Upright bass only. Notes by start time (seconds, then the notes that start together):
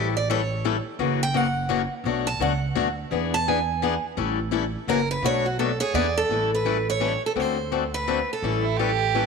Already playing: A1
0.99 F#1
2.04 B1
2.40 C#2
2.75 D2
3.11 E2
4.17 A1
4.87 F#1
5.22 B1
5.94 E2
6.29 A1
7.36 D2
8.42 A1